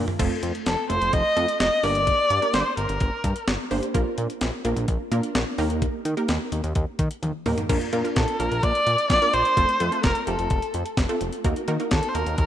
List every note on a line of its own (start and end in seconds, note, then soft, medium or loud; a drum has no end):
0.08 floor tom loud
0.19 0.29 F1 loud
0.19 0.65 A3 medium
0.19 0.65 C4 medium
0.19 0.65 F4 medium
0.19 0.65 A4 loud
0.19 kick loud
0.19 closed hi-hat medium
0.19 crash medium
0.43 0.52 F2 loud
0.43 closed hi-hat medium
0.55 closed hi-hat medium
0.66 0.76 F1 loud
0.66 0.88 A4 medium
0.66 snare loud
0.66 closed hi-hat medium
0.89 0.99 F1 loud
0.89 1.20 A3 medium
0.89 1.20 C4 medium
0.89 1.20 F4 medium
0.89 1.20 A4 medium
0.89 1.15 C5 loud
0.89 closed hi-hat medium
1.02 1.11 F1 loud
1.02 closed hi-hat medium
1.13 1.23 F1 loud
1.13 1.60 D#5 loud
1.13 kick loud
1.13 closed hi-hat medium
1.36 1.46 F2 loud
1.36 1.82 A3 medium
1.36 1.82 C4 medium
1.36 1.82 F4 medium
1.36 1.82 A4 medium
1.36 closed hi-hat medium
1.48 closed hi-hat medium
1.60 1.70 F1 loud
1.60 1.85 D#5 loud
1.60 snare loud
1.60 closed hi-hat medium
1.83 2.12 G1 medium
1.83 2.30 A#3 medium
1.83 2.30 D4 medium
1.83 2.30 G4 medium
1.83 2.30 A#4 medium
1.83 2.56 D5 loud
1.83 open hi-hat medium
1.95 closed hi-hat medium
2.07 kick loud
2.07 closed hi-hat medium
2.30 2.40 G2 loud
2.30 closed hi-hat medium
2.42 3.03 A#3 medium
2.42 3.03 D4 medium
2.42 3.03 G4 medium
2.42 3.03 A#4 medium
2.42 closed hi-hat soft
2.54 2.63 G1 loud
2.54 2.77 C5 medium
2.54 snare loud
2.54 closed hi-hat medium
2.77 2.87 G1 loud
2.77 3.44 A#4 medium
2.77 closed hi-hat medium
2.89 2.98 G1 loud
2.89 closed hi-hat medium
3.00 3.10 G1 loud
3.00 kick loud
3.00 closed hi-hat medium
3.24 3.34 G2 loud
3.24 kick medium
3.24 closed hi-hat medium
3.36 closed hi-hat medium
3.48 3.57 G1 loud
3.48 snare loud
3.48 closed hi-hat medium
3.71 3.81 G1 loud
3.71 3.86 A#3 medium
3.71 3.86 D4 medium
3.71 3.86 G4 medium
3.71 3.86 C5 loud
3.71 open hi-hat medium
3.83 closed hi-hat medium
3.94 4.04 A#1 loud
3.94 4.40 A#3 medium
3.94 4.40 D4 medium
3.94 4.40 F4 medium
3.94 4.40 A#4 loud
3.94 kick loud
3.94 closed hi-hat medium
4.18 4.27 A#2 loud
4.18 closed hi-hat medium
4.30 closed hi-hat medium
4.41 4.51 A#1 loud
4.41 snare loud
4.41 closed hi-hat medium
4.65 4.74 A#1 loud
4.65 4.95 A#3 medium
4.65 4.95 D4 medium
4.65 4.95 F4 medium
4.65 4.95 A#4 loud
4.65 closed hi-hat medium
4.76 4.86 A#1 loud
4.76 closed hi-hat medium
4.88 4.98 A#1 loud
4.88 kick loud
4.88 closed hi-hat medium
5.11 5.21 A#2 loud
5.11 5.57 A#3 medium
5.11 5.57 D4 medium
5.11 5.57 F4 medium
5.11 5.57 A#4 loud
5.11 closed hi-hat medium
5.23 closed hi-hat medium
5.35 5.44 A#1 loud
5.35 snare loud
5.35 closed hi-hat medium
5.58 5.87 D#2 loud
5.58 6.05 A#3 loud
5.58 6.05 D#4 medium
5.58 6.05 G4 medium
5.58 6.05 A#4 loud
5.58 open hi-hat medium
5.70 closed hi-hat medium
5.82 kick loud
5.82 closed hi-hat medium
6.05 6.15 D#3 loud
6.05 closed hi-hat medium
6.17 6.78 A#3 medium
6.17 6.78 D#4 medium
6.17 6.78 G4 medium
6.17 6.78 A#4 loud
6.17 closed hi-hat medium
6.28 6.38 D#2 loud
6.28 snare loud
6.28 closed hi-hat medium
6.52 6.62 D#2 loud
6.52 closed hi-hat medium
6.64 6.73 D#2 loud
6.64 closed hi-hat medium
6.75 6.85 D#2 loud
6.75 kick loud
6.75 closed hi-hat medium
6.99 7.09 D#3 loud
6.99 kick medium
6.99 closed hi-hat medium
7.11 closed hi-hat medium
7.23 7.32 D#2 loud
7.23 closed hi-hat medium
7.23 high tom medium
7.46 7.55 D#2 loud
7.46 7.61 A#3 medium
7.46 7.61 D#4 medium
7.46 7.61 G4 medium
7.46 7.61 A#4 loud
7.46 mid tom medium
7.46 open hi-hat medium
7.58 closed hi-hat medium
7.58 floor tom medium
7.69 7.79 A#1 loud
7.69 7.85 A#3 medium
7.69 7.85 D4 medium
7.69 7.85 F4 medium
7.69 7.85 A#4 loud
7.69 kick loud
7.69 closed hi-hat medium
7.69 crash medium
7.81 closed hi-hat soft
7.93 8.02 A#2 loud
7.93 8.00 A#3 medium
7.93 8.00 D4 medium
7.93 8.00 F4 medium
7.93 8.00 A#4 loud
7.93 closed hi-hat medium
8.04 8.27 A#3 medium
8.04 8.27 D4 medium
8.04 8.27 F4 medium
8.04 8.27 A#4 medium
8.04 closed hi-hat soft
8.16 8.26 A#1 loud
8.16 8.41 A4 medium
8.16 kick loud
8.16 snare loud
8.16 closed hi-hat medium
8.28 closed hi-hat medium
8.40 8.49 A#1 loud
8.40 8.93 A#3 medium
8.40 8.93 D4 medium
8.40 8.93 F4 medium
8.40 8.93 A#4 medium
8.40 8.65 A#4 medium
8.40 closed hi-hat medium
8.52 8.61 A#1 medium
8.52 closed hi-hat medium
8.63 8.73 A#1 loud
8.63 9.10 D5 loud
8.63 kick loud
8.63 closed hi-hat medium
8.75 closed hi-hat medium
8.87 8.96 A#2 loud
8.87 closed hi-hat medium
8.98 closed hi-hat medium
9.10 9.19 A#1 loud
9.10 9.35 D5 loud
9.10 kick loud
9.10 snare loud
9.10 closed hi-hat medium
9.22 9.45 A#3 medium
9.22 9.45 D4 medium
9.22 9.45 F4 medium
9.22 9.45 A#4 medium
9.22 closed hi-hat medium
9.33 9.43 A#1 loud
9.33 10.03 C5 loud
9.33 closed hi-hat medium
9.45 closed hi-hat medium
9.57 9.66 F1 loud
9.57 9.72 A3 medium
9.57 9.72 C4 medium
9.57 9.72 F4 medium
9.57 9.72 A4 medium
9.57 kick loud
9.57 closed hi-hat medium
9.69 closed hi-hat soft
9.80 9.90 F2 medium
9.80 9.88 A3 medium
9.80 9.88 C4 medium
9.80 9.88 F4 medium
9.80 9.88 A4 medium
9.80 closed hi-hat medium
9.92 10.15 A3 medium
9.92 10.15 C4 medium
9.92 10.15 F4 medium
9.92 10.15 A4 medium
9.92 closed hi-hat soft
10.03 10.13 F1 loud
10.03 10.26 A#4 medium
10.03 kick loud
10.03 snare loud
10.03 closed hi-hat medium
10.15 closed hi-hat medium
10.27 10.37 F1 loud
10.27 10.81 A3 medium
10.27 10.80 C4 medium
10.27 10.80 F4 medium
10.27 10.80 G4 medium
10.27 10.94 A4 medium
10.27 closed hi-hat medium
10.39 10.48 F1 loud
10.39 closed hi-hat medium
10.50 10.60 F1 loud
10.50 kick loud
10.50 closed hi-hat medium
10.62 closed hi-hat medium
10.74 10.84 F2 loud
10.74 closed hi-hat medium
10.86 closed hi-hat medium
10.97 11.07 F1 medium
10.97 kick loud
10.97 snare loud
10.97 closed hi-hat medium
11.09 11.32 A3 medium
11.09 11.32 C4 medium
11.09 11.32 F4 medium
11.09 11.32 A4 loud
11.09 closed hi-hat medium
11.21 11.31 F1 medium
11.21 closed hi-hat medium
11.33 closed hi-hat medium
11.44 11.54 D#2 loud
11.44 11.60 A#3 medium
11.44 11.60 D#4 medium
11.44 11.60 F#4 medium
11.44 11.60 A#4 loud
11.44 kick loud
11.44 closed hi-hat medium
11.56 closed hi-hat soft
11.68 11.77 D#3 loud
11.68 11.76 A#3 medium
11.68 11.76 D#4 medium
11.68 11.76 F#4 medium
11.68 11.76 A#4 loud
11.68 closed hi-hat medium
11.80 12.03 A#3 medium
11.80 12.03 D#4 medium
11.80 12.03 F#4 medium
11.80 12.03 A#4 medium
11.80 closed hi-hat medium
11.91 12.01 D#2 loud
11.91 12.11 A4 medium
11.91 kick loud
11.91 snare loud
11.91 closed hi-hat medium
12.03 closed hi-hat medium
12.09 12.16 C5 medium
12.15 12.24 D#2 loud
12.15 12.46 A#3 medium
12.15 12.46 D#4 medium
12.15 12.46 F#4 medium
12.15 12.38 A#4 medium
12.15 12.46 A#4 medium
12.15 closed hi-hat medium
12.26 12.36 D#2 loud
12.26 closed hi-hat medium
12.38 12.46 D#2 loud
12.38 12.46 A#4 medium
12.38 kick loud
12.38 closed hi-hat medium